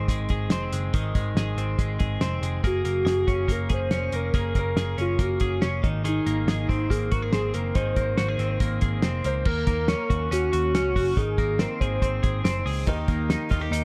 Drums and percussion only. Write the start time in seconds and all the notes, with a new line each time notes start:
0.08 kick, closed hi-hat
0.29 kick, closed hi-hat
0.50 snare, closed hi-hat
0.73 closed hi-hat
0.94 kick, closed hi-hat
1.15 kick, closed hi-hat
1.37 snare, closed hi-hat
1.58 closed hi-hat
1.79 kick, closed hi-hat
2.00 kick, closed hi-hat
2.21 snare, closed hi-hat
2.43 closed hi-hat
2.64 kick, closed hi-hat
2.85 closed hi-hat
3.07 snare, closed hi-hat
3.28 kick, closed hi-hat
3.49 kick, closed hi-hat
3.69 kick, closed hi-hat
3.91 snare, closed hi-hat
4.12 closed hi-hat
4.34 kick, closed hi-hat
4.55 kick, closed hi-hat
4.77 snare, closed hi-hat
4.98 closed hi-hat
5.19 kick, closed hi-hat
5.40 kick, closed hi-hat
5.62 snare, closed hi-hat
5.84 kick, closed hi-hat
6.05 closed hi-hat
6.27 closed hi-hat
6.48 snare, closed hi-hat
6.69 kick, closed hi-hat
6.91 kick, closed hi-hat
7.12 kick, closed hi-hat
7.33 snare, closed hi-hat
7.54 closed hi-hat
7.75 kick, closed hi-hat
7.96 kick, closed hi-hat
8.17 snare, closed hi-hat
8.39 closed hi-hat
8.60 kick, closed hi-hat
8.81 kick, closed hi-hat
9.02 snare, closed hi-hat
9.24 closed hi-hat
9.45 kick, crash
9.67 kick, closed hi-hat
9.88 snare, closed hi-hat
10.10 kick, closed hi-hat
10.32 closed hi-hat
10.53 closed hi-hat
10.75 snare, closed hi-hat
10.96 kick, open hi-hat
11.17 kick, closed hi-hat
11.38 kick, closed hi-hat
11.59 snare, closed hi-hat
11.81 kick, closed hi-hat
12.02 kick, closed hi-hat
12.24 kick, closed hi-hat
12.45 snare, closed hi-hat
12.67 open hi-hat
12.87 kick, closed hi-hat
13.08 kick, closed hi-hat
13.30 snare, closed hi-hat
13.51 kick, closed hi-hat
13.73 closed hi-hat